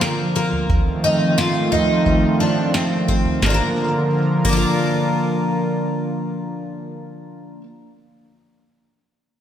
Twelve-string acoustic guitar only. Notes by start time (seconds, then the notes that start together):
0.01 A#3
0.36 A#3
1.04 D#4
1.38 F4
1.72 D#4
2.40 D4
2.74 C4
3.08 C4
3.42 A#3 D4
3.50 F4
3.54 A#4
4.45 A#3
4.49 D4 F4
4.57 A#4